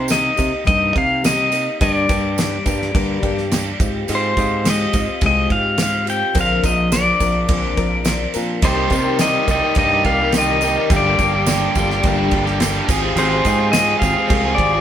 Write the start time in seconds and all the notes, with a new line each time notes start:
Already playing: C3
0.08 G3 A#3 D#4 G4 D#5, snare, tambourine, crash
0.37 C3 A#3 D#4 G4, kick, tambourine, crash
0.64 C3 G3 A#3 D#4 G4 D#5, kick, tambourine, crash
0.68 G2
0.93 C3 A#3 D#4 G4, kick, crash
0.98 F5
1.22 G3 A#3 D#4 G4, snare, tambourine, crash
1.26 D#5
1.50 A#3 D#4 G4, tambourine, crash
1.80 G2 D3 G3 A#3 D4 G4 D5, kick, tambourine, crash
2.09 G2 G3 A#3 D4 G4, kick, tambourine, crash
2.37 G3 A#3 D4 G4, snare, tambourine, crash
2.66 G2 G3 A#3 D4 G4, kick, tambourine, crash
2.82 snare
2.94 G2 D3 G3 A#3 D4 G4, kick, tambourine, crash
3.23 G2 G3 A#3 D4 G4, kick, crash
3.38 snare
3.49 G3 A#3 D4 G4, snare, tambourine, crash
3.80 G#2 C4 F4 G4, kick, tambourine, crash
4.08 G#2 G#3 C4 F4 G4, tambourine, crash
4.15 C5
4.37 G#2 C4 F4 G4, kick, tambourine, crash
4.64 G#3 C4 F4 G4, snare, tambourine, crash
4.70 D#5
4.93 G#2 C4 F4 G4, kick, tambourine, crash
5.21 C2 G#3 C4 F4 G4, kick, tambourine, crash
5.26 D#5
5.50 G#2 C4 F4 G4 F5, kick, crash
5.77 G#3 C4 F4 G4, snare, tambourine, crash
5.83 F5
6.06 C4 F4 G4, tambourine, crash
6.10 G5
6.34 A#1 A#2 D3 F3 C4 D4 A#4, kick, tambourine, crash
6.41 F5
6.63 A#1 F3 C4 D4 A#4 D#5, kick, tambourine, crash
6.92 F3 C4 D4 A#4 D5, snare, tambourine, crash
7.20 A#1 F3 C4 D4 A#4, kick, tambourine, crash
7.47 A#1 A#2 D3 F3 C4 D4 A#4, kick, crash
7.77 A#1 F3 C4 D4 A#4, kick, tambourine, crash
8.04 F3 C4 D4 A#4, snare, tambourine, crash
8.34 A#2 F3 C4 D4 A#4, tambourine, crash
8.61 C2 C3 D#3 G3 A#3 D#4 A#4 C5, kick, tambourine, crash
8.66 D#4 G4
8.77 G3 D#4 G4
8.90 C3 D#3 G3 A#3 D#4 G4 A#4, kick, tambourine, crash
9.06 G3 D#4 G4
9.18 C3 D#3 G3 A#3 D#4 A#4 D#5, snare, tambourine, crash
9.23 D#4 G4
9.47 C2 D#3 G3 A#3 D#4 A#4 D#5, kick, tambourine, crash
9.52 G4
9.64 G3 D#4 G4
9.75 G2 C3 G3 A#3 D#4 A#4 D#5, kick, tambourine, crash
9.93 G3 D#4 G4
10.04 C2 A#3 D#4 A#4 F5, kick, crash
10.21 G3 D#4 G4
10.32 C3 D#3 G3 A#3 D#4 A#4, snare, tambourine, crash
10.37 G3 D#4 G4 D#5
10.61 D#3 G3 D#4 G4 A#4, tambourine, crash
10.65 A#3
10.76 G3 D#4 G4
10.90 G1 G2 D3 G3 A#3 D4 G4, kick, tambourine, crash
10.97 D5
11.05 G3 A#3 D4 G4
11.19 G1 G3 A#3 D4 G4, kick, tambourine, crash
11.33 G3 A#3 D4 G4
11.46 G2 D3 G3 A#3 D4 G4, snare, tambourine, crash
11.50 G4
11.75 G1 G3 A#3 D4 G4, kick, tambourine, crash
11.90 G3 A#3 D4 G4, snare
12.03 G1 G2 D3 G3 A#3 D4 G4, kick, tambourine, crash
12.16 G3 A#3 D4 G4
12.31 G1 A#3 D4 G4, kick, crash
12.36 G3
12.46 G3 A#3 D4 G4, snare
12.59 G2 D3 G3 A#3 D4 G4, snare, tambourine, crash
12.88 G#1 G#3 C4 F4 G4 G#4, kick, tambourine, crash
13.02 C4 F4 G#4
13.16 G#1 G#3 C4 F4 G4 G#4 C5, tambourine, crash
13.31 C4 F4 G#4
13.45 G#2 G#3 C4 F4 G4 G#4, kick, tambourine, crash
13.49 C4
13.59 C4 F4 G#4
13.72 G#3 C4 F4 G4 D#5, snare, tambourine, crash
13.76 G#4
13.99 G#1 G#3 C4 F4 G4 F5, kick, tambourine, crash
14.04 G#4
14.16 C4 F4 G#4
14.27 C2 G#3 C4 F4 G4, kick, tambourine, crash
14.45 C4 F4 G#4
14.55 G#1 C4 F4 G4 D5, kick, crash
14.73 C4 F4 G#4